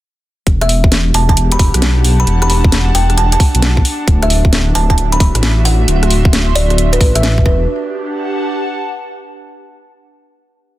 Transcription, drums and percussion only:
0.47 kick, closed hi-hat
0.61 cross-stick, closed hi-hat
0.69 open hi-hat
0.84 kick
0.92 snare, closed hi-hat
1.14 open hi-hat
1.29 kick, closed hi-hat
1.37 closed hi-hat
1.52 closed hi-hat
1.59 kick, open hi-hat
1.74 cross-stick, closed hi-hat
1.82 snare, closed hi-hat
2.04 open hi-hat
2.27 closed hi-hat
2.42 cross-stick, closed hi-hat
2.50 open hi-hat
2.64 kick
2.72 snare, closed hi-hat
2.95 open hi-hat
3.10 cross-stick, closed hi-hat
3.18 closed hi-hat
3.32 closed hi-hat
3.40 kick, open hi-hat
3.55 closed hi-hat
3.62 snare, closed hi-hat
3.77 kick
3.85 open hi-hat
4.08 kick, closed hi-hat
4.22 cross-stick, closed hi-hat
4.30 open hi-hat
4.45 kick
4.53 snare, closed hi-hat
4.75 open hi-hat
4.90 kick, closed hi-hat
4.98 closed hi-hat
5.12 closed hi-hat
5.20 kick, open hi-hat
5.35 cross-stick, closed hi-hat
5.43 snare, closed hi-hat
5.65 open hi-hat
5.88 closed hi-hat
6.03 cross-stick, closed hi-hat
6.10 open hi-hat
6.25 kick
6.33 snare, closed hi-hat
6.56 open hi-hat
6.70 cross-stick, closed hi-hat
6.78 closed hi-hat
6.93 closed hi-hat
7.01 kick, open hi-hat
7.16 cross-stick, closed hi-hat
7.23 snare, closed hi-hat
7.38 kick
7.46 kick

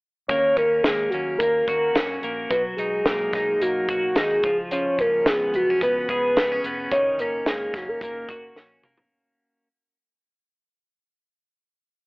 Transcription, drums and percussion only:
0.29 kick, closed hi-hat
0.57 kick, closed hi-hat
0.84 snare, closed hi-hat
1.12 closed hi-hat
1.40 kick, closed hi-hat
1.68 kick, closed hi-hat
1.95 snare, closed hi-hat
2.23 closed hi-hat
2.50 kick, closed hi-hat
2.78 closed hi-hat
3.06 snare, closed hi-hat
3.33 kick, snare, closed hi-hat
3.61 closed hi-hat
3.89 kick, closed hi-hat
4.16 snare, closed hi-hat
4.43 kick, closed hi-hat
4.71 closed hi-hat
4.99 kick, closed hi-hat
5.26 snare, closed hi-hat
5.54 closed hi-hat
5.81 kick, closed hi-hat
6.09 kick, closed hi-hat
6.37 snare, closed hi-hat
6.64 closed hi-hat
6.92 kick, closed hi-hat
7.19 closed hi-hat
7.46 snare, closed hi-hat
7.74 kick, snare, closed hi-hat
8.01 kick, closed hi-hat
8.29 kick, closed hi-hat
8.56 snare
8.83 mid tom
8.98 floor tom

